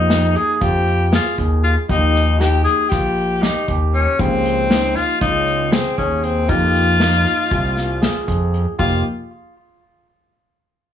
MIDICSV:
0, 0, Header, 1, 6, 480
1, 0, Start_track
1, 0, Key_signature, -4, "minor"
1, 0, Tempo, 511073
1, 1775, Time_signature, 9, 3, 24, 8
1, 10265, End_track
2, 0, Start_track
2, 0, Title_t, "Tenor saxophone"
2, 0, Program_c, 0, 66
2, 0, Note_on_c, 0, 63, 93
2, 342, Note_on_c, 0, 68, 95
2, 356, Note_off_c, 0, 63, 0
2, 510, Note_off_c, 0, 68, 0
2, 510, Note_on_c, 0, 68, 73
2, 586, Note_on_c, 0, 67, 86
2, 600, Note_off_c, 0, 68, 0
2, 1061, Note_off_c, 0, 67, 0
2, 1076, Note_on_c, 0, 65, 88
2, 1290, Note_off_c, 0, 65, 0
2, 1536, Note_on_c, 0, 65, 80
2, 1644, Note_off_c, 0, 65, 0
2, 1783, Note_on_c, 0, 63, 89
2, 2248, Note_on_c, 0, 67, 90
2, 2262, Note_off_c, 0, 63, 0
2, 2474, Note_off_c, 0, 67, 0
2, 2480, Note_on_c, 0, 68, 95
2, 2717, Note_on_c, 0, 67, 84
2, 2731, Note_off_c, 0, 68, 0
2, 3212, Note_on_c, 0, 63, 76
2, 3226, Note_off_c, 0, 67, 0
2, 3454, Note_off_c, 0, 63, 0
2, 3702, Note_on_c, 0, 61, 85
2, 3947, Note_on_c, 0, 60, 97
2, 3961, Note_off_c, 0, 61, 0
2, 4657, Note_on_c, 0, 65, 94
2, 4671, Note_off_c, 0, 60, 0
2, 4889, Note_off_c, 0, 65, 0
2, 4894, Note_on_c, 0, 63, 93
2, 5373, Note_on_c, 0, 60, 87
2, 5388, Note_off_c, 0, 63, 0
2, 5612, Note_off_c, 0, 60, 0
2, 5617, Note_on_c, 0, 61, 82
2, 5854, Note_on_c, 0, 60, 86
2, 5868, Note_off_c, 0, 61, 0
2, 6098, Note_on_c, 0, 65, 105
2, 6112, Note_off_c, 0, 60, 0
2, 7775, Note_off_c, 0, 65, 0
2, 8255, Note_on_c, 0, 65, 84
2, 8477, Note_off_c, 0, 65, 0
2, 10265, End_track
3, 0, Start_track
3, 0, Title_t, "Tine electric piano"
3, 0, Program_c, 1, 4
3, 93, Note_on_c, 1, 63, 79
3, 517, Note_off_c, 1, 63, 0
3, 573, Note_on_c, 1, 65, 82
3, 997, Note_off_c, 1, 65, 0
3, 1052, Note_on_c, 1, 68, 85
3, 1265, Note_off_c, 1, 68, 0
3, 1296, Note_on_c, 1, 68, 69
3, 1719, Note_off_c, 1, 68, 0
3, 1777, Note_on_c, 1, 63, 89
3, 2200, Note_off_c, 1, 63, 0
3, 2256, Note_on_c, 1, 63, 81
3, 2679, Note_off_c, 1, 63, 0
3, 2738, Note_on_c, 1, 65, 77
3, 3160, Note_off_c, 1, 65, 0
3, 3212, Note_on_c, 1, 67, 82
3, 3425, Note_off_c, 1, 67, 0
3, 3455, Note_on_c, 1, 67, 74
3, 3879, Note_off_c, 1, 67, 0
3, 3934, Note_on_c, 1, 49, 93
3, 4358, Note_off_c, 1, 49, 0
3, 4411, Note_on_c, 1, 63, 79
3, 4836, Note_off_c, 1, 63, 0
3, 4894, Note_on_c, 1, 65, 84
3, 5317, Note_off_c, 1, 65, 0
3, 5374, Note_on_c, 1, 68, 81
3, 5586, Note_off_c, 1, 68, 0
3, 5614, Note_on_c, 1, 68, 71
3, 6038, Note_off_c, 1, 68, 0
3, 6091, Note_on_c, 1, 63, 94
3, 6516, Note_off_c, 1, 63, 0
3, 6576, Note_on_c, 1, 63, 83
3, 6998, Note_off_c, 1, 63, 0
3, 7051, Note_on_c, 1, 65, 79
3, 7475, Note_off_c, 1, 65, 0
3, 7530, Note_on_c, 1, 68, 80
3, 7743, Note_off_c, 1, 68, 0
3, 7772, Note_on_c, 1, 68, 67
3, 8196, Note_off_c, 1, 68, 0
3, 8253, Note_on_c, 1, 65, 84
3, 8476, Note_off_c, 1, 65, 0
3, 10265, End_track
4, 0, Start_track
4, 0, Title_t, "Grand piano"
4, 0, Program_c, 2, 0
4, 0, Note_on_c, 2, 53, 55
4, 0, Note_on_c, 2, 58, 53
4, 0, Note_on_c, 2, 63, 52
4, 0, Note_on_c, 2, 67, 62
4, 1737, Note_off_c, 2, 53, 0
4, 1739, Note_off_c, 2, 58, 0
4, 1742, Note_off_c, 2, 63, 0
4, 1746, Note_off_c, 2, 67, 0
4, 1776, Note_on_c, 2, 53, 56
4, 1777, Note_on_c, 2, 58, 51
4, 1785, Note_on_c, 2, 63, 54
4, 1787, Note_on_c, 2, 67, 62
4, 3898, Note_off_c, 2, 53, 0
4, 3899, Note_off_c, 2, 58, 0
4, 3903, Note_off_c, 2, 63, 0
4, 3904, Note_off_c, 2, 67, 0
4, 3936, Note_on_c, 2, 53, 56
4, 3943, Note_on_c, 2, 58, 50
4, 3947, Note_on_c, 2, 63, 55
4, 3952, Note_on_c, 2, 67, 61
4, 6057, Note_off_c, 2, 53, 0
4, 6060, Note_off_c, 2, 58, 0
4, 6062, Note_off_c, 2, 63, 0
4, 6065, Note_off_c, 2, 67, 0
4, 6091, Note_on_c, 2, 53, 54
4, 6096, Note_on_c, 2, 58, 50
4, 6098, Note_on_c, 2, 63, 58
4, 6104, Note_on_c, 2, 67, 65
4, 8214, Note_off_c, 2, 53, 0
4, 8216, Note_off_c, 2, 58, 0
4, 8217, Note_off_c, 2, 63, 0
4, 8220, Note_off_c, 2, 67, 0
4, 8255, Note_on_c, 2, 58, 68
4, 8255, Note_on_c, 2, 67, 81
4, 8256, Note_on_c, 2, 53, 71
4, 8257, Note_on_c, 2, 63, 69
4, 8477, Note_off_c, 2, 58, 0
4, 8477, Note_off_c, 2, 67, 0
4, 8478, Note_off_c, 2, 53, 0
4, 8478, Note_off_c, 2, 63, 0
4, 10265, End_track
5, 0, Start_track
5, 0, Title_t, "Analog synth bass"
5, 0, Program_c, 3, 38
5, 0, Note_on_c, 3, 41, 87
5, 343, Note_off_c, 3, 41, 0
5, 579, Note_on_c, 3, 41, 89
5, 1122, Note_off_c, 3, 41, 0
5, 1299, Note_on_c, 3, 39, 83
5, 1660, Note_off_c, 3, 39, 0
5, 1779, Note_on_c, 3, 39, 95
5, 2503, Note_off_c, 3, 39, 0
5, 2741, Note_on_c, 3, 34, 91
5, 3283, Note_off_c, 3, 34, 0
5, 3461, Note_on_c, 3, 39, 81
5, 3822, Note_off_c, 3, 39, 0
5, 3941, Note_on_c, 3, 37, 101
5, 4664, Note_off_c, 3, 37, 0
5, 4897, Note_on_c, 3, 37, 95
5, 5440, Note_off_c, 3, 37, 0
5, 5618, Note_on_c, 3, 39, 82
5, 6096, Note_on_c, 3, 41, 93
5, 6110, Note_off_c, 3, 39, 0
5, 6820, Note_off_c, 3, 41, 0
5, 7059, Note_on_c, 3, 36, 101
5, 7601, Note_off_c, 3, 36, 0
5, 7778, Note_on_c, 3, 41, 83
5, 8139, Note_off_c, 3, 41, 0
5, 8261, Note_on_c, 3, 29, 95
5, 8480, Note_off_c, 3, 29, 0
5, 10265, End_track
6, 0, Start_track
6, 0, Title_t, "Drums"
6, 95, Note_on_c, 9, 38, 93
6, 95, Note_on_c, 9, 42, 73
6, 189, Note_off_c, 9, 38, 0
6, 189, Note_off_c, 9, 42, 0
6, 338, Note_on_c, 9, 42, 55
6, 432, Note_off_c, 9, 42, 0
6, 576, Note_on_c, 9, 42, 79
6, 578, Note_on_c, 9, 36, 100
6, 670, Note_off_c, 9, 42, 0
6, 672, Note_off_c, 9, 36, 0
6, 819, Note_on_c, 9, 42, 61
6, 913, Note_off_c, 9, 42, 0
6, 1058, Note_on_c, 9, 38, 107
6, 1058, Note_on_c, 9, 42, 86
6, 1152, Note_off_c, 9, 38, 0
6, 1152, Note_off_c, 9, 42, 0
6, 1297, Note_on_c, 9, 42, 61
6, 1298, Note_on_c, 9, 36, 75
6, 1391, Note_off_c, 9, 42, 0
6, 1392, Note_off_c, 9, 36, 0
6, 1538, Note_on_c, 9, 42, 59
6, 1632, Note_off_c, 9, 42, 0
6, 1779, Note_on_c, 9, 36, 103
6, 1780, Note_on_c, 9, 42, 84
6, 1873, Note_off_c, 9, 36, 0
6, 1874, Note_off_c, 9, 42, 0
6, 2023, Note_on_c, 9, 38, 33
6, 2023, Note_on_c, 9, 42, 60
6, 2117, Note_off_c, 9, 38, 0
6, 2117, Note_off_c, 9, 42, 0
6, 2262, Note_on_c, 9, 38, 97
6, 2262, Note_on_c, 9, 42, 75
6, 2356, Note_off_c, 9, 38, 0
6, 2356, Note_off_c, 9, 42, 0
6, 2502, Note_on_c, 9, 42, 55
6, 2596, Note_off_c, 9, 42, 0
6, 2741, Note_on_c, 9, 36, 107
6, 2741, Note_on_c, 9, 38, 33
6, 2741, Note_on_c, 9, 42, 76
6, 2835, Note_off_c, 9, 36, 0
6, 2835, Note_off_c, 9, 38, 0
6, 2835, Note_off_c, 9, 42, 0
6, 2986, Note_on_c, 9, 42, 53
6, 3079, Note_off_c, 9, 42, 0
6, 3221, Note_on_c, 9, 38, 103
6, 3221, Note_on_c, 9, 42, 70
6, 3315, Note_off_c, 9, 38, 0
6, 3315, Note_off_c, 9, 42, 0
6, 3458, Note_on_c, 9, 42, 56
6, 3459, Note_on_c, 9, 36, 79
6, 3552, Note_off_c, 9, 42, 0
6, 3553, Note_off_c, 9, 36, 0
6, 3702, Note_on_c, 9, 42, 56
6, 3796, Note_off_c, 9, 42, 0
6, 3938, Note_on_c, 9, 42, 81
6, 3939, Note_on_c, 9, 36, 104
6, 4032, Note_off_c, 9, 42, 0
6, 4033, Note_off_c, 9, 36, 0
6, 4181, Note_on_c, 9, 42, 57
6, 4275, Note_off_c, 9, 42, 0
6, 4421, Note_on_c, 9, 38, 101
6, 4421, Note_on_c, 9, 42, 77
6, 4515, Note_off_c, 9, 38, 0
6, 4515, Note_off_c, 9, 42, 0
6, 4660, Note_on_c, 9, 38, 34
6, 4660, Note_on_c, 9, 42, 60
6, 4754, Note_off_c, 9, 38, 0
6, 4754, Note_off_c, 9, 42, 0
6, 4896, Note_on_c, 9, 42, 83
6, 4897, Note_on_c, 9, 36, 102
6, 4990, Note_off_c, 9, 42, 0
6, 4991, Note_off_c, 9, 36, 0
6, 5136, Note_on_c, 9, 42, 59
6, 5230, Note_off_c, 9, 42, 0
6, 5376, Note_on_c, 9, 38, 109
6, 5376, Note_on_c, 9, 42, 85
6, 5470, Note_off_c, 9, 38, 0
6, 5470, Note_off_c, 9, 42, 0
6, 5618, Note_on_c, 9, 36, 70
6, 5618, Note_on_c, 9, 42, 62
6, 5711, Note_off_c, 9, 36, 0
6, 5712, Note_off_c, 9, 42, 0
6, 5857, Note_on_c, 9, 42, 63
6, 5951, Note_off_c, 9, 42, 0
6, 6097, Note_on_c, 9, 36, 102
6, 6098, Note_on_c, 9, 42, 85
6, 6191, Note_off_c, 9, 36, 0
6, 6192, Note_off_c, 9, 42, 0
6, 6335, Note_on_c, 9, 42, 63
6, 6429, Note_off_c, 9, 42, 0
6, 6576, Note_on_c, 9, 38, 100
6, 6576, Note_on_c, 9, 42, 78
6, 6669, Note_off_c, 9, 38, 0
6, 6669, Note_off_c, 9, 42, 0
6, 6819, Note_on_c, 9, 42, 57
6, 6913, Note_off_c, 9, 42, 0
6, 7057, Note_on_c, 9, 36, 103
6, 7057, Note_on_c, 9, 42, 76
6, 7151, Note_off_c, 9, 36, 0
6, 7151, Note_off_c, 9, 42, 0
6, 7299, Note_on_c, 9, 38, 33
6, 7299, Note_on_c, 9, 42, 56
6, 7393, Note_off_c, 9, 38, 0
6, 7393, Note_off_c, 9, 42, 0
6, 7538, Note_on_c, 9, 38, 104
6, 7538, Note_on_c, 9, 42, 76
6, 7632, Note_off_c, 9, 38, 0
6, 7632, Note_off_c, 9, 42, 0
6, 7778, Note_on_c, 9, 36, 74
6, 7781, Note_on_c, 9, 42, 60
6, 7872, Note_off_c, 9, 36, 0
6, 7874, Note_off_c, 9, 42, 0
6, 8020, Note_on_c, 9, 42, 55
6, 8114, Note_off_c, 9, 42, 0
6, 8258, Note_on_c, 9, 36, 92
6, 8352, Note_off_c, 9, 36, 0
6, 10265, End_track
0, 0, End_of_file